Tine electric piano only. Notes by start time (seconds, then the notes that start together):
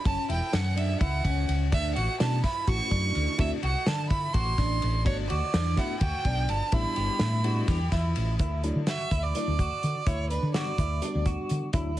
2.20 A3 C#4 E4 F#4
2.67 A3 C#4 E4 F#4
3.38 A3 C4 E4 F#4
5.05 A3 B3 D4 F#4
5.76 A3 B3 D4 F#4
6.72 G3 B3 D4 E4
7.44 G3 B3 D4 E4
8.64 F#3 A3 D4 E4
9.35 F#3 A3 D4 E4
10.54 G3 B3 D4 F#4
11.02 G3 B3 D4 F#4
11.73 F#3 A3 D4 E4